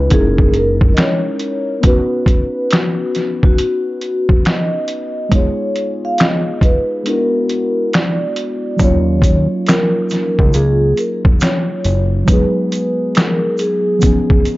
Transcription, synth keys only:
0, 0, Header, 1, 2, 480
1, 0, Start_track
1, 0, Tempo, 869565
1, 1019, Time_signature, 4, 2, 24, 8
1, 8044, End_track
2, 0, Start_track
2, 0, Title_t, "Synth keys"
2, 0, Program_c, 0, 88
2, 0, Control_c, 0, 64, 127
2, 0, Note_on_c, 0, 56, 58
2, 0, Note_on_c, 0, 61, 60
2, 0, Note_on_c, 0, 63, 57
2, 0, Note_on_c, 0, 64, 58
2, 0, Note_on_c, 0, 71, 73
2, 44, Note_off_c, 0, 56, 0
2, 44, Note_on_c, 0, 56, 58
2, 54, Note_off_c, 0, 61, 0
2, 54, Note_on_c, 0, 61, 65
2, 60, Note_off_c, 0, 63, 0
2, 60, Note_on_c, 0, 63, 58
2, 67, Control_c, 0, 64, 0
2, 68, Note_off_c, 0, 64, 0
2, 69, Note_off_c, 0, 71, 0
2, 71, Note_on_c, 0, 64, 63
2, 82, Note_on_c, 0, 70, 79
2, 156, Control_c, 0, 64, 127
2, 992, Note_off_c, 0, 56, 0
2, 997, Note_off_c, 0, 61, 0
2, 998, Note_on_c, 0, 59, 64
2, 1000, Note_off_c, 0, 63, 0
2, 1006, Note_off_c, 0, 64, 0
2, 1008, Note_on_c, 0, 61, 59
2, 1012, Note_off_c, 0, 70, 0
2, 1017, Note_on_c, 0, 63, 61
2, 1026, Control_c, 0, 64, 0
2, 1029, Note_on_c, 0, 66, 66
2, 1036, Note_on_c, 0, 71, 73
2, 1124, Control_c, 0, 64, 127
2, 2906, Note_off_c, 0, 59, 0
2, 2912, Note_off_c, 0, 61, 0
2, 2916, Note_off_c, 0, 63, 0
2, 2920, Note_on_c, 0, 56, 67
2, 2922, Note_off_c, 0, 66, 0
2, 2925, Note_off_c, 0, 71, 0
2, 2931, Note_on_c, 0, 59, 61
2, 2940, Note_on_c, 0, 63, 56
2, 2947, Control_c, 0, 64, 0
2, 2952, Note_on_c, 0, 65, 64
2, 2963, Note_on_c, 0, 68, 64
2, 3036, Control_c, 0, 64, 127
2, 3870, Note_off_c, 0, 56, 0
2, 3876, Note_off_c, 0, 59, 0
2, 3880, Note_off_c, 0, 63, 0
2, 3883, Note_on_c, 0, 56, 60
2, 3887, Note_off_c, 0, 65, 0
2, 3892, Note_off_c, 0, 68, 0
2, 3892, Note_on_c, 0, 59, 63
2, 3904, Note_on_c, 0, 62, 57
2, 3907, Control_c, 0, 64, 0
2, 3915, Note_on_c, 0, 64, 61
2, 3924, Note_on_c, 0, 66, 62
2, 3990, Control_c, 0, 64, 127
2, 4832, Note_off_c, 0, 56, 0
2, 4836, Note_off_c, 0, 59, 0
2, 4839, Note_on_c, 0, 54, 69
2, 4842, Note_off_c, 0, 62, 0
2, 4848, Note_off_c, 0, 64, 0
2, 4849, Note_on_c, 0, 58, 61
2, 4853, Note_off_c, 0, 66, 0
2, 4858, Note_on_c, 0, 61, 56
2, 4867, Control_c, 0, 64, 0
2, 4869, Note_on_c, 0, 63, 58
2, 4881, Note_on_c, 0, 65, 72
2, 4953, Control_c, 0, 64, 127
2, 6747, Note_off_c, 0, 54, 0
2, 6752, Note_off_c, 0, 58, 0
2, 6756, Note_off_c, 0, 61, 0
2, 6762, Note_off_c, 0, 63, 0
2, 6762, Note_on_c, 0, 54, 69
2, 6768, Note_off_c, 0, 65, 0
2, 6773, Note_on_c, 0, 56, 60
2, 6782, Note_on_c, 0, 59, 55
2, 6787, Control_c, 0, 64, 0
2, 6791, Note_on_c, 0, 63, 56
2, 6803, Note_on_c, 0, 68, 73
2, 6869, Control_c, 0, 64, 127
2, 7711, Note_off_c, 0, 54, 0
2, 7717, Note_off_c, 0, 56, 0
2, 7720, Note_on_c, 0, 53, 65
2, 7722, Note_off_c, 0, 59, 0
2, 7726, Note_off_c, 0, 63, 0
2, 7730, Note_on_c, 0, 59, 61
2, 7732, Note_off_c, 0, 68, 0
2, 7739, Note_on_c, 0, 61, 58
2, 7747, Control_c, 0, 64, 0
2, 7752, Note_on_c, 0, 63, 61
2, 7763, Note_on_c, 0, 68, 66
2, 7828, Control_c, 0, 64, 127
2, 8044, Note_off_c, 0, 53, 0
2, 8044, Note_off_c, 0, 59, 0
2, 8044, Note_off_c, 0, 61, 0
2, 8044, Note_off_c, 0, 63, 0
2, 8044, Note_off_c, 0, 68, 0
2, 8044, End_track
0, 0, End_of_file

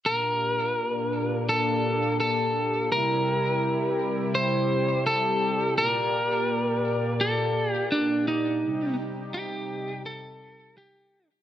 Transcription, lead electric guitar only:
0, 0, Header, 1, 2, 480
1, 0, Start_track
1, 0, Key_signature, -2, "minor"
1, 0, Tempo, 714286
1, 40, Time_signature, 4, 2, 24, 8
1, 7678, End_track
2, 0, Start_track
2, 0, Title_t, "Lead electric guitar"
2, 0, Program_c, 0, 29
2, 41, Note_on_c, 0, 70, 98
2, 1000, Note_off_c, 0, 70, 0
2, 1003, Note_on_c, 0, 69, 92
2, 1454, Note_off_c, 0, 69, 0
2, 1481, Note_on_c, 0, 69, 92
2, 1960, Note_off_c, 0, 69, 0
2, 1963, Note_on_c, 0, 70, 108
2, 2920, Note_off_c, 0, 70, 0
2, 2923, Note_on_c, 0, 72, 105
2, 3401, Note_off_c, 0, 72, 0
2, 3404, Note_on_c, 0, 69, 96
2, 3855, Note_off_c, 0, 69, 0
2, 3884, Note_on_c, 0, 70, 114
2, 4845, Note_on_c, 0, 69, 99
2, 4871, Note_off_c, 0, 70, 0
2, 5181, Note_off_c, 0, 69, 0
2, 5181, Note_on_c, 0, 67, 99
2, 5295, Note_off_c, 0, 67, 0
2, 5321, Note_on_c, 0, 62, 84
2, 5544, Note_off_c, 0, 62, 0
2, 5563, Note_on_c, 0, 63, 76
2, 6015, Note_off_c, 0, 63, 0
2, 6278, Note_on_c, 0, 67, 94
2, 6732, Note_off_c, 0, 67, 0
2, 6760, Note_on_c, 0, 69, 106
2, 7239, Note_off_c, 0, 69, 0
2, 7242, Note_on_c, 0, 67, 86
2, 7576, Note_off_c, 0, 67, 0
2, 7678, End_track
0, 0, End_of_file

